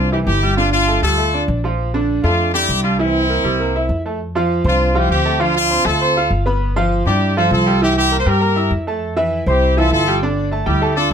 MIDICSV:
0, 0, Header, 1, 4, 480
1, 0, Start_track
1, 0, Key_signature, -1, "major"
1, 0, Tempo, 301205
1, 916, Time_signature, 4, 2, 24, 8
1, 17742, End_track
2, 0, Start_track
2, 0, Title_t, "Grand piano"
2, 0, Program_c, 0, 0
2, 195, Note_on_c, 0, 64, 73
2, 201, Note_on_c, 0, 52, 76
2, 589, Note_off_c, 0, 64, 0
2, 593, Note_off_c, 0, 52, 0
2, 681, Note_on_c, 0, 55, 69
2, 683, Note_on_c, 0, 67, 73
2, 876, Note_off_c, 0, 55, 0
2, 878, Note_off_c, 0, 67, 0
2, 910, Note_on_c, 0, 50, 73
2, 914, Note_on_c, 0, 62, 75
2, 1308, Note_off_c, 0, 50, 0
2, 1310, Note_off_c, 0, 62, 0
2, 1394, Note_on_c, 0, 57, 65
2, 1405, Note_on_c, 0, 69, 70
2, 1594, Note_off_c, 0, 57, 0
2, 1600, Note_off_c, 0, 69, 0
2, 1629, Note_on_c, 0, 55, 71
2, 1637, Note_on_c, 0, 67, 69
2, 1831, Note_off_c, 0, 55, 0
2, 1836, Note_off_c, 0, 67, 0
2, 1873, Note_on_c, 0, 57, 68
2, 1881, Note_on_c, 0, 69, 68
2, 2073, Note_off_c, 0, 57, 0
2, 2078, Note_off_c, 0, 69, 0
2, 2136, Note_on_c, 0, 62, 68
2, 2140, Note_on_c, 0, 74, 57
2, 2525, Note_off_c, 0, 62, 0
2, 2528, Note_off_c, 0, 74, 0
2, 2613, Note_on_c, 0, 53, 74
2, 2625, Note_on_c, 0, 65, 74
2, 3004, Note_off_c, 0, 53, 0
2, 3012, Note_off_c, 0, 65, 0
2, 3091, Note_on_c, 0, 50, 85
2, 3095, Note_on_c, 0, 62, 88
2, 3484, Note_off_c, 0, 50, 0
2, 3487, Note_off_c, 0, 62, 0
2, 3564, Note_on_c, 0, 57, 68
2, 3571, Note_on_c, 0, 69, 69
2, 3961, Note_off_c, 0, 57, 0
2, 3965, Note_off_c, 0, 69, 0
2, 4041, Note_on_c, 0, 50, 73
2, 4047, Note_on_c, 0, 62, 77
2, 4440, Note_off_c, 0, 50, 0
2, 4444, Note_off_c, 0, 62, 0
2, 4521, Note_on_c, 0, 55, 74
2, 4523, Note_on_c, 0, 67, 69
2, 4723, Note_off_c, 0, 55, 0
2, 4725, Note_off_c, 0, 67, 0
2, 4767, Note_on_c, 0, 52, 82
2, 4773, Note_on_c, 0, 64, 86
2, 5164, Note_off_c, 0, 52, 0
2, 5168, Note_off_c, 0, 64, 0
2, 5243, Note_on_c, 0, 58, 66
2, 5256, Note_on_c, 0, 70, 64
2, 5445, Note_off_c, 0, 58, 0
2, 5453, Note_off_c, 0, 70, 0
2, 5477, Note_on_c, 0, 55, 68
2, 5481, Note_on_c, 0, 67, 68
2, 5682, Note_off_c, 0, 55, 0
2, 5685, Note_off_c, 0, 67, 0
2, 5734, Note_on_c, 0, 58, 69
2, 5739, Note_on_c, 0, 70, 72
2, 5932, Note_off_c, 0, 58, 0
2, 5936, Note_off_c, 0, 70, 0
2, 5986, Note_on_c, 0, 64, 68
2, 5989, Note_on_c, 0, 76, 66
2, 6377, Note_off_c, 0, 64, 0
2, 6379, Note_off_c, 0, 76, 0
2, 6463, Note_on_c, 0, 57, 64
2, 6471, Note_on_c, 0, 69, 64
2, 6659, Note_off_c, 0, 57, 0
2, 6664, Note_off_c, 0, 69, 0
2, 6938, Note_on_c, 0, 53, 84
2, 6943, Note_on_c, 0, 65, 81
2, 6957, Note_on_c, 0, 77, 81
2, 7333, Note_off_c, 0, 53, 0
2, 7336, Note_off_c, 0, 65, 0
2, 7345, Note_off_c, 0, 77, 0
2, 7412, Note_on_c, 0, 72, 72
2, 7414, Note_on_c, 0, 60, 66
2, 7421, Note_on_c, 0, 84, 66
2, 7810, Note_off_c, 0, 72, 0
2, 7811, Note_off_c, 0, 60, 0
2, 7815, Note_off_c, 0, 84, 0
2, 7885, Note_on_c, 0, 53, 71
2, 7893, Note_on_c, 0, 65, 84
2, 7900, Note_on_c, 0, 77, 67
2, 8286, Note_off_c, 0, 53, 0
2, 8291, Note_off_c, 0, 65, 0
2, 8295, Note_off_c, 0, 77, 0
2, 8369, Note_on_c, 0, 57, 70
2, 8370, Note_on_c, 0, 69, 74
2, 8376, Note_on_c, 0, 81, 75
2, 8571, Note_off_c, 0, 57, 0
2, 8572, Note_off_c, 0, 69, 0
2, 8576, Note_off_c, 0, 81, 0
2, 8600, Note_on_c, 0, 53, 79
2, 8602, Note_on_c, 0, 65, 84
2, 8615, Note_on_c, 0, 77, 81
2, 9003, Note_off_c, 0, 53, 0
2, 9004, Note_off_c, 0, 65, 0
2, 9012, Note_off_c, 0, 77, 0
2, 9095, Note_on_c, 0, 72, 68
2, 9098, Note_on_c, 0, 60, 71
2, 9101, Note_on_c, 0, 84, 68
2, 9295, Note_off_c, 0, 72, 0
2, 9297, Note_off_c, 0, 60, 0
2, 9299, Note_off_c, 0, 84, 0
2, 9326, Note_on_c, 0, 57, 71
2, 9330, Note_on_c, 0, 69, 73
2, 9333, Note_on_c, 0, 81, 74
2, 9530, Note_off_c, 0, 57, 0
2, 9532, Note_off_c, 0, 69, 0
2, 9534, Note_off_c, 0, 81, 0
2, 9575, Note_on_c, 0, 60, 70
2, 9584, Note_on_c, 0, 84, 65
2, 9589, Note_on_c, 0, 72, 73
2, 9775, Note_off_c, 0, 60, 0
2, 9781, Note_off_c, 0, 84, 0
2, 9783, Note_off_c, 0, 72, 0
2, 9830, Note_on_c, 0, 65, 75
2, 9833, Note_on_c, 0, 77, 75
2, 9840, Note_on_c, 0, 89, 66
2, 10220, Note_off_c, 0, 65, 0
2, 10222, Note_off_c, 0, 77, 0
2, 10226, Note_off_c, 0, 89, 0
2, 10291, Note_on_c, 0, 59, 77
2, 10298, Note_on_c, 0, 71, 69
2, 10305, Note_on_c, 0, 83, 72
2, 10688, Note_off_c, 0, 59, 0
2, 10693, Note_off_c, 0, 71, 0
2, 10697, Note_off_c, 0, 83, 0
2, 10777, Note_on_c, 0, 65, 84
2, 10779, Note_on_c, 0, 53, 84
2, 10782, Note_on_c, 0, 77, 95
2, 11172, Note_off_c, 0, 65, 0
2, 11173, Note_off_c, 0, 53, 0
2, 11175, Note_off_c, 0, 77, 0
2, 11260, Note_on_c, 0, 62, 67
2, 11272, Note_on_c, 0, 74, 71
2, 11274, Note_on_c, 0, 86, 73
2, 11653, Note_off_c, 0, 62, 0
2, 11660, Note_off_c, 0, 74, 0
2, 11661, Note_off_c, 0, 86, 0
2, 11747, Note_on_c, 0, 53, 87
2, 11749, Note_on_c, 0, 65, 73
2, 11758, Note_on_c, 0, 77, 72
2, 12136, Note_off_c, 0, 53, 0
2, 12137, Note_off_c, 0, 65, 0
2, 12143, Note_off_c, 0, 77, 0
2, 12211, Note_on_c, 0, 55, 73
2, 12213, Note_on_c, 0, 67, 74
2, 12221, Note_on_c, 0, 79, 73
2, 12410, Note_off_c, 0, 55, 0
2, 12411, Note_off_c, 0, 67, 0
2, 12416, Note_off_c, 0, 79, 0
2, 12459, Note_on_c, 0, 52, 90
2, 12460, Note_on_c, 0, 64, 82
2, 12468, Note_on_c, 0, 76, 73
2, 12851, Note_off_c, 0, 52, 0
2, 12852, Note_off_c, 0, 64, 0
2, 12856, Note_off_c, 0, 76, 0
2, 12935, Note_on_c, 0, 70, 61
2, 12937, Note_on_c, 0, 58, 71
2, 12943, Note_on_c, 0, 82, 70
2, 13131, Note_off_c, 0, 70, 0
2, 13132, Note_off_c, 0, 58, 0
2, 13136, Note_off_c, 0, 82, 0
2, 13162, Note_on_c, 0, 55, 68
2, 13172, Note_on_c, 0, 67, 70
2, 13173, Note_on_c, 0, 79, 67
2, 13364, Note_off_c, 0, 55, 0
2, 13370, Note_off_c, 0, 67, 0
2, 13370, Note_off_c, 0, 79, 0
2, 13397, Note_on_c, 0, 58, 67
2, 13397, Note_on_c, 0, 70, 78
2, 13408, Note_on_c, 0, 82, 75
2, 13600, Note_off_c, 0, 58, 0
2, 13600, Note_off_c, 0, 70, 0
2, 13606, Note_off_c, 0, 82, 0
2, 13641, Note_on_c, 0, 64, 71
2, 13649, Note_on_c, 0, 76, 67
2, 13656, Note_on_c, 0, 88, 65
2, 14038, Note_off_c, 0, 64, 0
2, 14043, Note_off_c, 0, 76, 0
2, 14047, Note_off_c, 0, 88, 0
2, 14138, Note_on_c, 0, 57, 72
2, 14147, Note_on_c, 0, 69, 73
2, 14151, Note_on_c, 0, 81, 70
2, 14527, Note_off_c, 0, 57, 0
2, 14533, Note_off_c, 0, 69, 0
2, 14535, Note_off_c, 0, 81, 0
2, 14605, Note_on_c, 0, 52, 88
2, 14608, Note_on_c, 0, 76, 87
2, 14613, Note_on_c, 0, 64, 84
2, 14998, Note_off_c, 0, 52, 0
2, 15001, Note_off_c, 0, 76, 0
2, 15004, Note_off_c, 0, 64, 0
2, 15090, Note_on_c, 0, 60, 73
2, 15092, Note_on_c, 0, 72, 70
2, 15104, Note_on_c, 0, 84, 66
2, 15481, Note_off_c, 0, 60, 0
2, 15482, Note_off_c, 0, 72, 0
2, 15489, Note_off_c, 0, 84, 0
2, 15572, Note_on_c, 0, 52, 78
2, 15582, Note_on_c, 0, 64, 72
2, 15583, Note_on_c, 0, 76, 81
2, 15961, Note_off_c, 0, 52, 0
2, 15967, Note_off_c, 0, 64, 0
2, 15967, Note_off_c, 0, 76, 0
2, 16044, Note_on_c, 0, 55, 73
2, 16056, Note_on_c, 0, 67, 78
2, 16062, Note_on_c, 0, 79, 82
2, 16239, Note_off_c, 0, 55, 0
2, 16246, Note_off_c, 0, 67, 0
2, 16250, Note_off_c, 0, 79, 0
2, 16291, Note_on_c, 0, 50, 79
2, 16302, Note_on_c, 0, 62, 84
2, 16302, Note_on_c, 0, 74, 83
2, 16679, Note_off_c, 0, 50, 0
2, 16685, Note_off_c, 0, 62, 0
2, 16686, Note_off_c, 0, 74, 0
2, 16754, Note_on_c, 0, 69, 64
2, 16757, Note_on_c, 0, 57, 68
2, 16771, Note_on_c, 0, 81, 73
2, 16952, Note_off_c, 0, 69, 0
2, 16954, Note_off_c, 0, 57, 0
2, 16962, Note_off_c, 0, 81, 0
2, 16987, Note_on_c, 0, 55, 70
2, 16990, Note_on_c, 0, 79, 65
2, 16994, Note_on_c, 0, 67, 65
2, 17188, Note_off_c, 0, 55, 0
2, 17189, Note_off_c, 0, 79, 0
2, 17191, Note_off_c, 0, 67, 0
2, 17234, Note_on_c, 0, 57, 75
2, 17241, Note_on_c, 0, 69, 75
2, 17248, Note_on_c, 0, 81, 72
2, 17432, Note_off_c, 0, 57, 0
2, 17435, Note_off_c, 0, 69, 0
2, 17439, Note_off_c, 0, 81, 0
2, 17476, Note_on_c, 0, 62, 70
2, 17479, Note_on_c, 0, 74, 70
2, 17481, Note_on_c, 0, 86, 71
2, 17742, Note_off_c, 0, 62, 0
2, 17742, Note_off_c, 0, 74, 0
2, 17742, Note_off_c, 0, 86, 0
2, 17742, End_track
3, 0, Start_track
3, 0, Title_t, "Horn section"
3, 0, Program_c, 1, 61
3, 0, Note_on_c, 1, 62, 59
3, 0, Note_on_c, 1, 65, 77
3, 163, Note_off_c, 1, 65, 0
3, 166, Note_off_c, 1, 62, 0
3, 188, Note_on_c, 1, 67, 70
3, 202, Note_on_c, 1, 64, 56
3, 298, Note_off_c, 1, 67, 0
3, 308, Note_off_c, 1, 64, 0
3, 426, Note_on_c, 1, 67, 89
3, 440, Note_on_c, 1, 64, 66
3, 878, Note_off_c, 1, 67, 0
3, 885, Note_off_c, 1, 64, 0
3, 908, Note_on_c, 1, 65, 91
3, 916, Note_on_c, 1, 62, 71
3, 1135, Note_off_c, 1, 62, 0
3, 1136, Note_off_c, 1, 65, 0
3, 1153, Note_on_c, 1, 65, 102
3, 1154, Note_on_c, 1, 62, 67
3, 1603, Note_off_c, 1, 65, 0
3, 1604, Note_off_c, 1, 62, 0
3, 1646, Note_on_c, 1, 69, 96
3, 1654, Note_on_c, 1, 65, 73
3, 2315, Note_off_c, 1, 69, 0
3, 2320, Note_off_c, 1, 65, 0
3, 3568, Note_on_c, 1, 65, 89
3, 3576, Note_on_c, 1, 62, 67
3, 4016, Note_off_c, 1, 65, 0
3, 4020, Note_off_c, 1, 62, 0
3, 4038, Note_on_c, 1, 67, 100
3, 4061, Note_on_c, 1, 64, 73
3, 4492, Note_off_c, 1, 67, 0
3, 4504, Note_off_c, 1, 64, 0
3, 4524, Note_on_c, 1, 65, 86
3, 4561, Note_on_c, 1, 62, 71
3, 4752, Note_off_c, 1, 65, 0
3, 4767, Note_on_c, 1, 64, 95
3, 4772, Note_off_c, 1, 62, 0
3, 4804, Note_on_c, 1, 60, 70
3, 6152, Note_off_c, 1, 64, 0
3, 6170, Note_off_c, 1, 60, 0
3, 7440, Note_on_c, 1, 62, 58
3, 7457, Note_on_c, 1, 65, 77
3, 7879, Note_off_c, 1, 62, 0
3, 7888, Note_off_c, 1, 65, 0
3, 7908, Note_on_c, 1, 64, 69
3, 7920, Note_on_c, 1, 67, 79
3, 8119, Note_off_c, 1, 67, 0
3, 8137, Note_on_c, 1, 60, 70
3, 8138, Note_on_c, 1, 67, 85
3, 8146, Note_off_c, 1, 64, 0
3, 8586, Note_off_c, 1, 60, 0
3, 8587, Note_off_c, 1, 67, 0
3, 8619, Note_on_c, 1, 65, 85
3, 8623, Note_on_c, 1, 62, 68
3, 8846, Note_off_c, 1, 65, 0
3, 8848, Note_off_c, 1, 62, 0
3, 8865, Note_on_c, 1, 65, 106
3, 8867, Note_on_c, 1, 62, 69
3, 9311, Note_off_c, 1, 65, 0
3, 9312, Note_off_c, 1, 62, 0
3, 9339, Note_on_c, 1, 69, 94
3, 9354, Note_on_c, 1, 65, 83
3, 10061, Note_off_c, 1, 69, 0
3, 10068, Note_off_c, 1, 65, 0
3, 11253, Note_on_c, 1, 67, 78
3, 11268, Note_on_c, 1, 64, 61
3, 11702, Note_off_c, 1, 67, 0
3, 11710, Note_off_c, 1, 64, 0
3, 11740, Note_on_c, 1, 69, 86
3, 11750, Note_on_c, 1, 65, 66
3, 11963, Note_off_c, 1, 69, 0
3, 11968, Note_off_c, 1, 65, 0
3, 11989, Note_on_c, 1, 69, 89
3, 12000, Note_on_c, 1, 65, 73
3, 12429, Note_off_c, 1, 69, 0
3, 12435, Note_off_c, 1, 65, 0
3, 12476, Note_on_c, 1, 67, 101
3, 12481, Note_on_c, 1, 64, 72
3, 12690, Note_off_c, 1, 67, 0
3, 12693, Note_off_c, 1, 64, 0
3, 12709, Note_on_c, 1, 67, 105
3, 12713, Note_on_c, 1, 64, 78
3, 13044, Note_off_c, 1, 67, 0
3, 13046, Note_off_c, 1, 64, 0
3, 13061, Note_on_c, 1, 72, 77
3, 13174, Note_off_c, 1, 72, 0
3, 13189, Note_on_c, 1, 67, 79
3, 13190, Note_on_c, 1, 70, 89
3, 13899, Note_off_c, 1, 67, 0
3, 13900, Note_off_c, 1, 70, 0
3, 15110, Note_on_c, 1, 64, 68
3, 15130, Note_on_c, 1, 67, 78
3, 15544, Note_off_c, 1, 64, 0
3, 15555, Note_off_c, 1, 67, 0
3, 15578, Note_on_c, 1, 69, 87
3, 15586, Note_on_c, 1, 65, 75
3, 15785, Note_off_c, 1, 69, 0
3, 15801, Note_off_c, 1, 65, 0
3, 15805, Note_on_c, 1, 69, 86
3, 15821, Note_on_c, 1, 65, 78
3, 16249, Note_off_c, 1, 69, 0
3, 16257, Note_off_c, 1, 65, 0
3, 16994, Note_on_c, 1, 67, 82
3, 17004, Note_on_c, 1, 64, 66
3, 17441, Note_off_c, 1, 67, 0
3, 17446, Note_off_c, 1, 64, 0
3, 17471, Note_on_c, 1, 69, 96
3, 17482, Note_on_c, 1, 65, 75
3, 17696, Note_off_c, 1, 69, 0
3, 17702, Note_off_c, 1, 65, 0
3, 17742, End_track
4, 0, Start_track
4, 0, Title_t, "Upright bass"
4, 0, Program_c, 2, 32
4, 0, Note_on_c, 2, 36, 95
4, 382, Note_off_c, 2, 36, 0
4, 425, Note_on_c, 2, 31, 93
4, 1547, Note_off_c, 2, 31, 0
4, 1629, Note_on_c, 2, 38, 80
4, 2306, Note_off_c, 2, 38, 0
4, 2360, Note_on_c, 2, 34, 94
4, 3479, Note_off_c, 2, 34, 0
4, 3564, Note_on_c, 2, 41, 96
4, 4238, Note_off_c, 2, 41, 0
4, 4282, Note_on_c, 2, 36, 93
4, 5404, Note_off_c, 2, 36, 0
4, 5489, Note_on_c, 2, 36, 91
4, 6164, Note_off_c, 2, 36, 0
4, 6200, Note_on_c, 2, 41, 82
4, 7324, Note_off_c, 2, 41, 0
4, 7400, Note_on_c, 2, 36, 91
4, 8081, Note_off_c, 2, 36, 0
4, 8117, Note_on_c, 2, 38, 93
4, 9243, Note_off_c, 2, 38, 0
4, 9323, Note_on_c, 2, 38, 89
4, 10002, Note_off_c, 2, 38, 0
4, 10047, Note_on_c, 2, 31, 86
4, 11165, Note_off_c, 2, 31, 0
4, 11244, Note_on_c, 2, 43, 87
4, 11920, Note_off_c, 2, 43, 0
4, 11965, Note_on_c, 2, 36, 94
4, 13080, Note_off_c, 2, 36, 0
4, 13165, Note_on_c, 2, 43, 87
4, 13837, Note_off_c, 2, 43, 0
4, 13874, Note_on_c, 2, 41, 83
4, 14991, Note_off_c, 2, 41, 0
4, 15082, Note_on_c, 2, 36, 91
4, 15751, Note_off_c, 2, 36, 0
4, 15796, Note_on_c, 2, 31, 92
4, 16907, Note_off_c, 2, 31, 0
4, 16996, Note_on_c, 2, 38, 89
4, 17664, Note_off_c, 2, 38, 0
4, 17742, End_track
0, 0, End_of_file